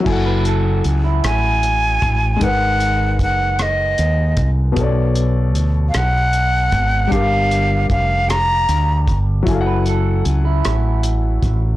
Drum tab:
CC |x-----|------|------|------|
HH |-xxxxx|xxxxxx|xxxxxx|xxxxxx|
SD |---r--|---r--|---r--|---r--|
BD |o----o|o-o--o|o----o|o-o--o|

CC |------|
HH |xxxxxx|
SD |---r--|
BD |o----o|